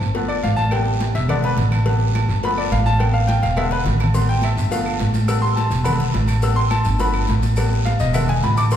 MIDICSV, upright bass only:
0, 0, Header, 1, 2, 480
1, 0, Start_track
1, 0, Key_signature, 0, "minor"
1, 0, Tempo, 285307
1, 1220, Time_signature, 4, 2, 24, 8
1, 14746, End_track
2, 0, Start_track
2, 0, Title_t, "Upright bass"
2, 0, Program_c, 0, 32
2, 20, Note_on_c, 0, 31, 97
2, 690, Note_off_c, 0, 31, 0
2, 737, Note_on_c, 0, 33, 86
2, 1847, Note_off_c, 0, 33, 0
2, 1936, Note_on_c, 0, 28, 97
2, 2607, Note_off_c, 0, 28, 0
2, 2638, Note_on_c, 0, 33, 93
2, 3757, Note_off_c, 0, 33, 0
2, 3848, Note_on_c, 0, 31, 94
2, 4522, Note_off_c, 0, 31, 0
2, 4566, Note_on_c, 0, 33, 92
2, 5680, Note_off_c, 0, 33, 0
2, 5768, Note_on_c, 0, 28, 92
2, 6442, Note_off_c, 0, 28, 0
2, 6489, Note_on_c, 0, 33, 87
2, 7602, Note_off_c, 0, 33, 0
2, 7686, Note_on_c, 0, 31, 95
2, 8361, Note_off_c, 0, 31, 0
2, 8404, Note_on_c, 0, 33, 94
2, 9520, Note_off_c, 0, 33, 0
2, 9594, Note_on_c, 0, 28, 100
2, 10275, Note_off_c, 0, 28, 0
2, 10329, Note_on_c, 0, 33, 88
2, 11443, Note_off_c, 0, 33, 0
2, 11539, Note_on_c, 0, 31, 100
2, 12209, Note_off_c, 0, 31, 0
2, 12253, Note_on_c, 0, 33, 100
2, 13367, Note_off_c, 0, 33, 0
2, 13463, Note_on_c, 0, 28, 94
2, 14133, Note_off_c, 0, 28, 0
2, 14182, Note_on_c, 0, 33, 96
2, 14746, Note_off_c, 0, 33, 0
2, 14746, End_track
0, 0, End_of_file